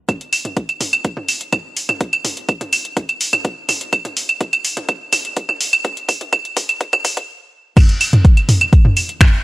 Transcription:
0.09 kick, closed hi-hat, mid tom, claves
0.21 closed hi-hat
0.33 open hi-hat, claves
0.45 closed hi-hat, mid tom
0.57 kick, closed hi-hat
0.69 closed hi-hat, claves
0.81 mid tom, open hi-hat
0.93 closed hi-hat, claves
1.05 kick, closed hi-hat
1.17 mid tom
1.28 open hi-hat, claves
1.41 closed hi-hat
1.53 kick, closed hi-hat, mid tom, claves
1.77 open hi-hat
1.89 closed hi-hat, mid tom, claves
2.01 kick, closed hi-hat
2.13 closed hi-hat, claves
2.25 mid tom, open hi-hat
2.37 closed hi-hat
2.49 kick, closed hi-hat, claves
2.61 closed hi-hat, mid tom
2.73 open hi-hat, claves
2.85 closed hi-hat
2.97 kick, closed hi-hat, mid tom
3.09 closed hi-hat, claves
3.21 open hi-hat
3.33 closed hi-hat, mid tom, claves
3.45 kick, closed hi-hat
3.69 mid tom, open hi-hat, claves
3.81 closed hi-hat
3.93 kick, closed hi-hat, claves
4.05 closed hi-hat, mid tom
4.17 open hi-hat
4.29 closed hi-hat, claves
4.41 kick, closed hi-hat, mid tom
4.53 closed hi-hat, claves
4.65 open hi-hat
4.77 closed hi-hat, mid tom
4.89 kick, closed hi-hat, claves
5.13 mid tom, open hi-hat, claves
5.25 closed hi-hat
5.37 kick, closed hi-hat
5.49 mid tom, claves
5.61 open hi-hat
5.73 closed hi-hat, claves
5.85 kick, closed hi-hat, mid tom
5.97 closed hi-hat
6.09 kick, open hi-hat, claves
6.21 closed hi-hat, mid tom
6.33 kick, closed hi-hat, claves
6.45 closed hi-hat
6.57 kick, mid tom, open hi-hat
6.69 closed hi-hat, claves
6.81 kick, closed hi-hat
6.93 kick, closed hi-hat, mid tom, claves
7.05 kick, open hi-hat
7.17 kick, closed hi-hat
7.77 kick, closed hi-hat, mid tom, crash, claves
7.89 closed hi-hat
8.01 open hi-hat, claves
8.13 closed hi-hat, mid tom
8.25 kick, closed hi-hat
8.37 closed hi-hat, claves
8.49 mid tom, open hi-hat
8.61 closed hi-hat, claves
8.73 kick, closed hi-hat
8.85 mid tom
8.97 open hi-hat, claves
9.09 closed hi-hat
9.21 finger snap, kick, closed hi-hat, mid tom, claves

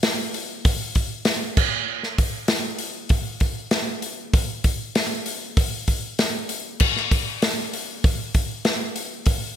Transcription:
0.03 snare, open hi-hat
0.34 open hi-hat
0.65 kick, open hi-hat
0.95 kick, open hi-hat
1.25 snare, open hi-hat
1.57 kick, crash
2.03 snare
2.18 kick, open hi-hat
2.48 snare, open hi-hat
2.79 open hi-hat
3.09 kick, open hi-hat
3.40 kick, open hi-hat
3.71 snare, open hi-hat
4.02 open hi-hat
4.34 kick, open hi-hat
4.64 kick, open hi-hat
4.95 snare, open hi-hat
5.26 open hi-hat
5.57 kick, open hi-hat
5.88 kick, open hi-hat
6.19 snare, open hi-hat
6.49 open hi-hat
6.80 kick, crash
6.96 snare
7.11 kick, open hi-hat
7.42 snare, open hi-hat
7.73 open hi-hat
8.04 kick, open hi-hat
8.34 kick, open hi-hat
8.65 snare, open hi-hat
8.96 open hi-hat
9.26 kick, open hi-hat

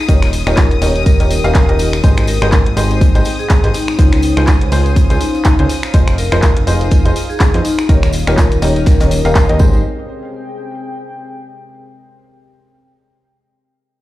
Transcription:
Already playing: D#4 F5 D#6
0.08 D#1 C#4 D#4 G4 A#4 C#5, kick, closed hi-hat, tambourine
0.22 finger snap, snare, closed hi-hat, tambourine
0.28 G4
0.33 closed hi-hat, open hi-hat, tambourine
0.47 D#1 D#4 F4 G4 A#4 C#5, finger snap, snare, closed hi-hat, tambourine
0.57 A#4, kick, snare, clap, closed hi-hat, tambourine
0.71 closed hi-hat
0.81 D#1 D#4 G4 A#4 C#5, closed hi-hat, open hi-hat, tambourine
0.95 D#5, closed hi-hat, tambourine
1.06 A#4, kick, closed hi-hat, tambourine
1.20 D#1 D#4 G4 A#4 C#5, closed hi-hat, tambourine
1.30 closed hi-hat, open hi-hat, tambourine
1.44 D#1 D#4 G4 A#4 F5, snare, closed hi-hat, tambourine
1.55 kick, snare, clap, closed hi-hat, tambourine
1.69 D#1 D#4 G4 A#4 D#5, closed hi-hat
1.79 closed hi-hat, open hi-hat, tambourine
1.92 finger snap, snare, tambourine
2.03 G#1 C4 D#4 G4 G#4 C5, kick, closed hi-hat, tambourine
2.17 finger snap, closed hi-hat, tambourine
2.27 A#4, closed hi-hat, open hi-hat, tambourine
2.41 G#1 D#4 G4 G#4 A#4 C5, finger snap, snare, closed hi-hat, tambourine
2.52 kick, snare, clap, closed hi-hat, tambourine
2.66 closed hi-hat
2.71 G#3
2.77 G#1 D#4 G4 G#4 C5, closed hi-hat, open hi-hat, tambourine
2.81 G5
2.91 snare, closed hi-hat, tambourine
3.01 kick, closed hi-hat, tambourine
3.15 G#1 D#4 G4 G#4 C5, closed hi-hat, tambourine
3.25 closed hi-hat, open hi-hat, tambourine
3.39 G#4, closed hi-hat, tambourine
3.49 G#4, kick, snare, clap, closed hi-hat, tambourine
3.63 G#1 D#4 G4 G#4 C5, snare, closed hi-hat
3.74 C#4 D#4, closed hi-hat, open hi-hat, tambourine
3.88 finger snap, tambourine
3.93 C5
3.99 C#2 C#4 D#4 F4 G#4 C5, kick, closed hi-hat, tambourine
4.12 finger snap, snare, closed hi-hat, tambourine
4.22 D#4, closed hi-hat, open hi-hat, tambourine
4.37 C#2 C#4 F4 G#4 C5, finger snap, snare, closed hi-hat, tambourine
4.47 kick, snare, clap, closed hi-hat, tambourine
4.61 F5, closed hi-hat
4.72 C#2 C#4 F4 G#4 C5, closed hi-hat, open hi-hat, tambourine
4.86 closed hi-hat, tambourine
4.96 kick, closed hi-hat, tambourine
5.10 C#2 C#4 F4 G#4 C5, closed hi-hat, tambourine
5.20 D#4, closed hi-hat, open hi-hat, tambourine
5.35 snare, tambourine
5.45 kick, snare, clap, closed hi-hat, tambourine
5.59 C#2 C#4 F4 G#4 C5, closed hi-hat
5.69 D#4, closed hi-hat, open hi-hat, tambourine
5.83 finger snap, snare, tambourine
5.91 F1 D#4 F4 G#4 C5, kick, closed hi-hat, tambourine
6.07 finger snap, closed hi-hat, tambourine
6.18 A#4, closed hi-hat, open hi-hat, tambourine
6.31 F1 D#4 F4 G#4 A#4 C5, finger snap, snare, closed hi-hat, tambourine
6.42 kick, snare, clap, closed hi-hat, tambourine
6.57 closed hi-hat
6.67 F1 D#4 F4 G#4 C5, closed hi-hat, open hi-hat, tambourine
6.81 snare, closed hi-hat, tambourine
6.91 kick, closed hi-hat, tambourine
7.05 F1 D#4 F4 G#4 C5, closed hi-hat, tambourine
7.16 closed hi-hat, open hi-hat, tambourine
7.30 G#4, closed hi-hat, tambourine
7.40 G#4, kick, snare, clap, closed hi-hat, tambourine
7.54 F2 D#4 F4 G#4 C5, snare, closed hi-hat
7.64 D#4, closed hi-hat, open hi-hat, tambourine
7.79 finger snap, tambourine
7.89 D#1 C#4 D#4 G4 A#4 C#5, kick, closed hi-hat, tambourine
8.03 finger snap, snare, closed hi-hat, tambourine
8.13 closed hi-hat, open hi-hat, tambourine
8.27 D#1 D#4 F4 G4 A#4 C#5, finger snap, snare, closed hi-hat, tambourine
8.37 G4 A#4, kick, snare, clap, closed hi-hat, tambourine
8.51 closed hi-hat, tambourine
8.62 D#1 D#4 G4 A#4 C#5, closed hi-hat, open hi-hat, tambourine
8.76 D#5, closed hi-hat, tambourine
8.86 A#4, kick, snare, closed hi-hat, tambourine
9.00 D#1 D#4 G4 A#4 C#5, snare, closed hi-hat, tambourine
9.11 closed hi-hat, open hi-hat, tambourine
9.25 D#1 D#4 G4 A#4 F5, snare, closed hi-hat, tambourine
9.35 kick, snare, clap, closed hi-hat, tambourine
9.49 D#2 D#4 G4 A#4 D#5, closed hi-hat
9.59 G#1 C4 D#4 G4 G#4 C5, kick, tambourine
9.68 G#4
9.73 tambourine
10.00 G5

